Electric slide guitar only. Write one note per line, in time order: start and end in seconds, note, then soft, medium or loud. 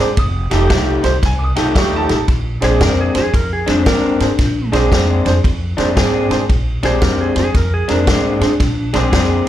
2.64 2.81 G#4 medium
2.82 2.99 A#4 medium
3.01 3.17 G#4 medium
3.18 3.34 G#4 medium
3.35 3.51 A#4 medium
3.53 3.69 G#4 medium
3.71 4.72 D4 medium
6.85 7.02 G#4 medium
7.02 7.19 A#4 medium
7.21 7.37 G#4 medium
7.39 7.55 G#4 medium
7.56 7.73 A#4 medium
7.74 7.90 G#4 medium
7.91 8.93 D4 medium